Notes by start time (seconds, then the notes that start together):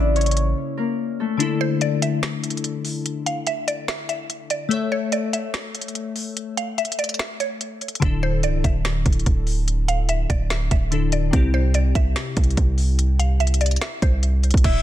Already playing: A1 C#3 A#3 C#4 D4 E4 A#4 C#5 D5 E5
0.16 C#4 C#5, closed hi-hat
0.21 closed hi-hat
0.26 closed hi-hat
0.31 closed hi-hat
0.37 closed hi-hat
0.77 A#3 A#4
1.20 A3 A4
1.37 D3 D4 E4, closed hi-hat
1.42 A4
1.61 C5
1.81 D5, closed hi-hat
2.02 E5, closed hi-hat
2.23 snare, closed hi-hat
2.44 closed hi-hat
2.50 closed hi-hat
2.57 closed hi-hat
2.64 closed hi-hat
2.85 open hi-hat
3.06 closed hi-hat
3.26 F5, closed hi-hat
3.47 E5, closed hi-hat
3.68 D5, closed hi-hat
3.88 E5, snare, closed hi-hat
4.09 E5, closed hi-hat
4.30 closed hi-hat
4.50 D5, closed hi-hat
4.69 A3 A4 C#5, closed hi-hat
4.74 E5
4.92 C#5
5.12 D5, closed hi-hat
5.33 E5, closed hi-hat
5.54 snare, closed hi-hat
5.75 closed hi-hat
5.81 closed hi-hat
5.88 closed hi-hat
5.95 closed hi-hat
6.16 open hi-hat
6.37 closed hi-hat
6.57 F5, closed hi-hat
6.78 E5, closed hi-hat
6.85 closed hi-hat
6.92 closed hi-hat
6.99 D5, closed hi-hat
7.04 closed hi-hat
7.09 closed hi-hat
7.14 closed hi-hat
7.19 E5, snare, closed hi-hat
7.40 C#5, closed hi-hat
7.61 closed hi-hat
7.81 closed hi-hat, open hi-hat
7.88 closed hi-hat
7.95 closed hi-hat
8.00 D1 D3 D4 E4, kick, closed hi-hat
8.05 A4
8.23 C5
8.43 C1 D5, closed hi-hat
8.64 D1 E5, kick, closed hi-hat
8.85 snare, closed hi-hat
9.06 D1, kick, closed hi-hat
9.13 closed hi-hat
9.19 closed hi-hat
9.26 D1, kick, closed hi-hat
9.47 open hi-hat
9.68 closed hi-hat
9.88 F5, closed hi-hat
10.09 E5, closed hi-hat
10.30 D1 D5, kick, closed hi-hat
10.50 E5, snare, closed hi-hat
10.71 D1 E5, kick, closed hi-hat
10.91 D3 D4 E4 A4, closed hi-hat
11.12 D5, closed hi-hat
11.31 C2 C3 C4 E4, kick, closed hi-hat
11.36 G4
11.54 C5
11.74 D5, closed hi-hat
11.95 C2 E5, kick, closed hi-hat
12.16 snare, closed hi-hat
12.37 C2, kick, closed hi-hat
12.44 closed hi-hat
12.50 closed hi-hat
12.57 C2, kick, closed hi-hat
12.78 open hi-hat
12.99 closed hi-hat
13.19 F5, closed hi-hat
13.40 E5, closed hi-hat
13.47 closed hi-hat
13.54 closed hi-hat
13.61 D5, closed hi-hat
13.66 closed hi-hat
13.71 closed hi-hat
13.76 closed hi-hat
13.81 E5, snare, closed hi-hat
14.02 C2 C5, kick, closed hi-hat
14.23 closed hi-hat
14.43 closed hi-hat, open hi-hat
14.51 C2, kick, closed hi-hat
14.57 closed hi-hat
14.64 D1 D3 E3 E4 E5, kick, closed hi-hat, crash